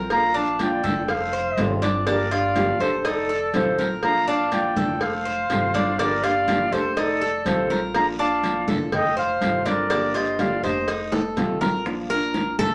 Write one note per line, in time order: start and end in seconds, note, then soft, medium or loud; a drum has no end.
0.00 0.77 A#1 loud
0.00 0.33 A#4 medium
0.10 0.34 F3 medium
0.10 0.34 A#3 medium
0.10 0.34 D4 medium
0.10 0.34 F4 medium
0.10 0.36 F5 medium
0.10 0.38 A#5 loud
0.10 cowbell loud
0.10 high conga soft
0.10 long guiro medium
0.34 0.58 A#3 soft
0.34 0.82 D4 medium
0.34 0.59 D4 soft
0.34 0.58 F4 medium
0.34 0.60 F5 medium
0.34 0.60 A5 loud
0.34 high conga soft
0.59 0.83 F3 medium
0.59 0.83 A#3 medium
0.59 0.83 D4 medium
0.59 0.82 F4 medium
0.59 1.06 D5 medium
0.59 1.06 G5 loud
0.59 cowbell medium
0.59 high conga medium
0.59 short guiro medium
0.84 1.53 F1 loud
0.84 1.08 A#3 soft
0.84 1.08 D4 soft
0.84 1.31 A4 medium
0.84 high conga loud
0.84 low conga medium
0.84 short guiro medium
1.08 1.76 C5 medium
1.08 1.77 F5 medium
1.08 muted nylon-string guitar stroke medium
1.08 cowbell loud
1.08 high conga soft
1.08 long guiro medium
1.33 1.81 C5 medium
1.33 high conga soft
1.57 2.74 G1 loud
1.57 1.81 C3 medium
1.57 1.81 D#3 medium
1.57 1.82 A3 medium
1.57 1.82 C4 medium
1.57 1.80 F4 medium
1.57 cowbell medium
1.57 high conga medium
1.57 short guiro medium
1.82 2.06 A3 soft
1.82 2.06 C4 soft
1.82 2.06 D4 medium
1.82 2.06 F4 medium
1.82 cowbell medium
1.82 high conga medium
1.82 short guiro medium
2.06 2.30 D3 medium
2.06 2.30 F3 medium
2.06 2.31 A#3 medium
2.06 2.31 D4 medium
2.06 2.30 D4 medium
2.06 2.29 G4 medium
2.06 2.33 A#4 medium
2.06 2.34 D5 loud
2.06 cowbell loud
2.06 long guiro medium
2.30 2.55 A#3 soft
2.30 2.55 D4 soft
2.30 2.79 F4 medium
2.30 2.54 G4 medium
2.30 2.82 D5 medium
2.30 2.83 F5 loud
2.30 cowbell medium
2.30 high conga soft
2.55 2.79 D3 medium
2.55 2.79 F3 medium
2.55 2.79 A#3 medium
2.55 2.79 D4 medium
2.55 2.78 G4 medium
2.55 cowbell medium
2.55 high conga loud
2.55 short guiro medium
2.79 3.50 F1 loud
2.79 3.04 A#3 soft
2.79 3.04 D4 soft
2.79 3.04 G4 medium
2.79 3.05 A4 medium
2.79 3.04 C5 medium
2.79 3.07 C5 medium
2.79 high conga soft
2.79 short guiro medium
3.05 3.29 D#4 medium
3.05 3.53 A4 medium
3.05 3.54 D5 medium
3.05 muted nylon-string guitar stroke medium
3.05 cowbell loud
3.05 high conga soft
3.05 long guiro medium
3.29 3.77 A4 medium
3.29 high conga soft
3.53 4.70 A#1 medium
3.53 3.77 C3 medium
3.53 3.77 D#3 medium
3.53 3.78 A3 medium
3.53 3.78 C4 medium
3.53 3.77 F4 medium
3.53 3.88 A4 medium
3.53 3.89 C5 loud
3.53 cowbell medium
3.53 high conga medium
3.53 short guiro medium
3.78 4.03 A3 soft
3.78 4.02 C4 soft
3.78 4.02 F4 soft
3.78 4.26 A#4 medium
3.78 high conga medium
3.78 short guiro medium
4.03 4.26 F3 medium
4.03 4.27 A#3 medium
4.03 4.27 D4 medium
4.03 4.26 F4 medium
4.03 4.26 F5 loud
4.03 4.26 A#5 loud
4.03 cowbell loud
4.03 high conga soft
4.03 long guiro medium
4.27 4.51 A#3 soft
4.27 4.75 D4 medium
4.27 4.51 D4 soft
4.27 4.51 F4 soft
4.27 4.50 F5 medium
4.27 4.51 A5 loud
4.27 high conga soft
4.52 4.75 F3 medium
4.52 4.76 A#3 medium
4.52 4.76 D4 medium
4.52 4.75 F4 medium
4.52 4.98 D5 medium
4.52 4.98 G5 loud
4.52 cowbell medium
4.52 high conga medium
4.52 short guiro medium
4.76 5.46 F1 loud
4.76 5.01 A#3 soft
4.76 5.00 D4 soft
4.76 5.24 A4 medium
4.76 high conga loud
4.76 low conga medium
4.76 short guiro medium
5.01 6.00 C5 medium
5.01 6.01 F5 loud
5.01 muted nylon-string guitar stroke medium
5.01 cowbell loud
5.01 high conga soft
5.01 long guiro medium
5.25 5.73 C5 medium
5.25 high conga soft
5.49 6.66 G1 medium
5.49 5.73 C3 medium
5.49 5.74 D#3 medium
5.49 5.74 A3 medium
5.49 5.74 C4 medium
5.49 5.73 F4 medium
5.49 cowbell medium
5.49 high conga medium
5.49 short guiro medium
5.74 5.99 A3 soft
5.74 5.98 C4 soft
5.74 5.98 D4 medium
5.74 5.98 F4 medium
5.74 cowbell medium
5.74 high conga medium
5.74 short guiro medium
5.99 6.22 D3 medium
5.99 6.22 F3 medium
5.99 6.23 A#3 medium
5.99 6.23 D4 medium
5.99 6.22 G4 medium
5.99 6.25 A#4 medium
5.99 6.26 D5 loud
5.99 cowbell loud
5.99 high conga soft
5.99 long guiro medium
6.23 6.47 A#3 soft
6.23 6.47 D4 medium
6.23 6.71 F4 medium
6.23 6.47 G4 medium
6.23 6.74 D5 medium
6.23 6.74 F5 loud
6.23 cowbell medium
6.23 high conga soft
6.47 6.71 D3 medium
6.47 6.72 F3 medium
6.47 6.72 A#3 medium
6.47 6.72 D4 medium
6.47 6.71 G4 medium
6.47 cowbell medium
6.47 high conga loud
6.47 short guiro medium
6.72 7.41 F1 loud
6.72 6.97 A#3 soft
6.72 6.96 D4 soft
6.72 6.96 G4 medium
6.72 6.96 A4 medium
6.72 6.96 C5 medium
6.72 6.97 C5 medium
6.72 high conga soft
6.72 short guiro medium
6.96 7.21 D#4 medium
6.96 7.42 A4 medium
6.96 7.43 D5 medium
6.96 muted nylon-string guitar stroke medium
6.96 cowbell loud
6.96 high conga soft
6.96 long guiro medium
7.21 7.69 A4 medium
7.21 high conga soft
7.45 8.61 A#1 loud
7.45 7.69 C3 medium
7.45 7.69 D#3 medium
7.45 7.69 A3 medium
7.45 7.69 C4 medium
7.45 7.68 F4 medium
7.45 7.80 A4 medium
7.45 7.80 C5 medium
7.45 cowbell medium
7.45 high conga medium
7.45 short guiro medium
7.70 7.94 A3 soft
7.70 7.94 C4 soft
7.70 7.93 F4 medium
7.70 8.18 A#4 medium
7.70 high conga medium
7.70 short guiro medium
7.94 8.18 F3 medium
7.94 8.18 A#3 medium
7.94 8.18 D4 medium
7.94 8.18 F4 medium
7.94 8.01 F5 medium
7.94 8.06 A#5 loud
7.94 cowbell loud
7.94 high conga soft
7.94 long guiro medium
8.19 8.43 A#3 soft
8.19 8.67 D4 loud
8.19 8.43 D4 medium
8.19 8.42 F4 medium
8.19 8.65 F5 medium
8.19 8.65 A5 loud
8.19 high conga soft
8.43 8.67 F3 medium
8.43 8.67 A#3 medium
8.43 8.68 D4 medium
8.43 8.67 F4 medium
8.43 cowbell medium
8.43 high conga medium
8.43 short guiro medium
8.68 9.37 F1 loud
8.68 8.92 A#3 soft
8.68 8.92 D4 medium
8.68 8.91 F4 soft
8.68 9.15 A4 medium
8.68 high conga loud
8.68 low conga medium
8.68 short guiro medium
8.92 9.16 D#5 medium
8.92 9.16 G5 loud
8.92 muted nylon-string guitar stroke medium
8.92 cowbell loud
8.92 high conga soft
8.92 low conga medium
8.92 long guiro medium
9.17 9.64 C5 medium
9.17 9.68 C5 medium
9.17 9.68 F5 loud
9.17 high conga soft
9.41 10.57 G1 medium
9.41 9.65 C3 medium
9.41 9.65 D#3 medium
9.41 9.65 A3 medium
9.41 9.65 C4 medium
9.41 9.64 F4 medium
9.41 cowbell medium
9.41 high conga medium
9.41 short guiro medium
9.65 9.90 A3 soft
9.65 9.89 C4 soft
9.65 9.89 D4 medium
9.65 9.89 F4 soft
9.65 10.17 A#4 medium
9.65 10.17 D5 loud
9.65 cowbell medium
9.65 high conga medium
9.65 short guiro medium
9.90 10.14 D3 medium
9.90 10.14 F3 medium
9.90 10.14 A#3 medium
9.90 10.14 D4 medium
9.90 10.13 G4 medium
9.90 cowbell loud
9.90 high conga soft
9.90 long guiro medium
10.14 10.38 A#3 soft
10.14 10.38 D4 soft
10.14 10.62 F4 medium
10.14 10.38 G4 medium
10.14 10.38 C5 medium
10.14 10.39 D#5 loud
10.14 cowbell medium
10.14 high conga soft
10.39 10.62 D3 medium
10.39 10.63 F3 medium
10.39 10.63 A#3 medium
10.39 10.63 D4 medium
10.39 10.62 G4 medium
10.39 10.62 D5 medium
10.39 10.62 F5 medium
10.39 cowbell medium
10.39 high conga loud
10.39 short guiro medium
10.63 11.33 F1 loud
10.63 10.87 A#3 soft
10.63 10.87 D4 soft
10.63 10.87 G4 soft
10.63 10.87 C5 medium
10.63 11.33 C5 medium
10.63 11.33 D#5 medium
10.63 high conga soft
10.63 short guiro medium
10.87 11.12 D#4 medium
10.87 muted nylon-string guitar stroke medium
10.87 cowbell loud
10.87 high conga soft
10.87 long guiro medium
11.12 11.60 A4 medium
11.12 high bongo loud
11.12 high conga soft
11.36 12.52 A#1 medium
11.36 11.60 C3 medium
11.36 11.60 D#3 medium
11.36 11.60 A3 medium
11.36 11.60 C4 medium
11.36 11.59 F4 medium
11.36 cowbell medium
11.36 low bongo medium
11.36 high conga medium
11.36 short guiro medium
11.60 11.85 A3 soft
11.60 11.85 C4 soft
11.60 11.84 F4 medium
11.60 11.85 A#4 medium
11.60 low bongo medium
11.60 high conga medium
11.60 short guiro medium
11.85 12.09 F3 medium
11.85 12.09 A#3 medium
11.85 12.09 D4 medium
11.85 12.09 F4 medium
11.85 high bongo medium
11.85 high conga soft
11.85 long guiro medium
12.10 12.75 A#3 medium
12.10 12.75 D4 medium
12.10 12.75 F4 medium
12.10 12.56 A#4 medium
12.10 high bongo soft
12.10 high conga soft
12.34 high bongo medium
12.34 high conga medium
12.34 short guiro medium
12.58 12.75 F1 loud
12.58 12.75 A4 medium
12.58 high bongo soft
12.58 high conga loud
12.58 low conga medium
12.58 short guiro medium